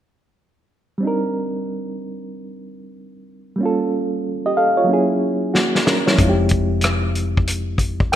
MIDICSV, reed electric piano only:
0, 0, Header, 1, 2, 480
1, 0, Start_track
1, 0, Tempo, 645161
1, 758, Time_signature, 4, 2, 24, 8
1, 6067, End_track
2, 0, Start_track
2, 0, Title_t, "Reed electric piano"
2, 0, Program_c, 0, 4
2, 729, Note_on_c, 0, 55, 57
2, 748, Note_on_c, 0, 60, 49
2, 764, Note_on_c, 0, 62, 46
2, 780, Note_on_c, 0, 63, 50
2, 799, Note_on_c, 0, 70, 63
2, 900, Control_c, 0, 64, 127
2, 2634, Note_off_c, 0, 55, 0
2, 2644, Note_off_c, 0, 60, 0
2, 2648, Note_on_c, 0, 55, 55
2, 2651, Note_off_c, 0, 62, 0
2, 2660, Note_off_c, 0, 63, 0
2, 2666, Note_on_c, 0, 58, 46
2, 2669, Note_off_c, 0, 70, 0
2, 2683, Note_on_c, 0, 61, 50
2, 2689, Control_c, 0, 64, 0
2, 2701, Note_on_c, 0, 65, 50
2, 2720, Note_on_c, 0, 69, 66
2, 2829, Control_c, 0, 64, 127
2, 3160, Note_off_c, 0, 65, 0
2, 3170, Note_off_c, 0, 69, 0
2, 3318, Note_on_c, 0, 75, 53
2, 3323, Note_on_c, 0, 67, 45
2, 3397, Note_off_c, 0, 75, 0
2, 3400, Note_off_c, 0, 67, 0
2, 3401, Note_on_c, 0, 77, 55
2, 3405, Note_on_c, 0, 69, 47
2, 3545, Note_off_c, 0, 77, 0
2, 3547, Note_off_c, 0, 69, 0
2, 3551, Note_on_c, 0, 73, 53
2, 3556, Note_on_c, 0, 65, 42
2, 3603, Note_on_c, 0, 54, 63
2, 3604, Note_off_c, 0, 55, 0
2, 3613, Note_off_c, 0, 58, 0
2, 3621, Note_on_c, 0, 58, 50
2, 3622, Note_off_c, 0, 61, 0
2, 3638, Note_on_c, 0, 61, 52
2, 3647, Control_c, 0, 64, 0
2, 3653, Note_on_c, 0, 64, 54
2, 3671, Note_on_c, 0, 68, 68
2, 3765, Control_c, 0, 64, 127
2, 3779, Note_off_c, 0, 73, 0
2, 3782, Note_off_c, 0, 65, 0
2, 4100, Note_off_c, 0, 58, 0
2, 4109, Note_off_c, 0, 61, 0
2, 4116, Note_off_c, 0, 64, 0
2, 4120, Note_on_c, 0, 66, 53
2, 4124, Note_on_c, 0, 58, 49
2, 4125, Note_off_c, 0, 68, 0
2, 4347, Note_off_c, 0, 66, 0
2, 4349, Note_off_c, 0, 58, 0
2, 4357, Note_on_c, 0, 70, 54
2, 4363, Note_on_c, 0, 61, 50
2, 4503, Note_off_c, 0, 70, 0
2, 4506, Note_off_c, 0, 61, 0
2, 4512, Note_on_c, 0, 73, 48
2, 4518, Note_on_c, 0, 64, 45
2, 4561, Note_off_c, 0, 54, 0
2, 4564, Note_on_c, 0, 53, 62
2, 4581, Note_on_c, 0, 56, 50
2, 4599, Note_on_c, 0, 60, 51
2, 4606, Control_c, 0, 64, 0
2, 4617, Note_on_c, 0, 63, 51
2, 4634, Note_on_c, 0, 65, 49
2, 4678, Note_off_c, 0, 65, 0
2, 4681, Note_on_c, 0, 67, 62
2, 4727, Control_c, 0, 64, 127
2, 4740, Note_off_c, 0, 73, 0
2, 4742, Note_off_c, 0, 64, 0
2, 5784, Note_off_c, 0, 63, 0
2, 5816, Note_off_c, 0, 67, 0
2, 6043, Note_on_c, 0, 79, 54
2, 6067, Note_off_c, 0, 53, 0
2, 6067, Note_off_c, 0, 56, 0
2, 6067, Note_off_c, 0, 60, 0
2, 6067, Note_off_c, 0, 79, 0
2, 6067, End_track
0, 0, End_of_file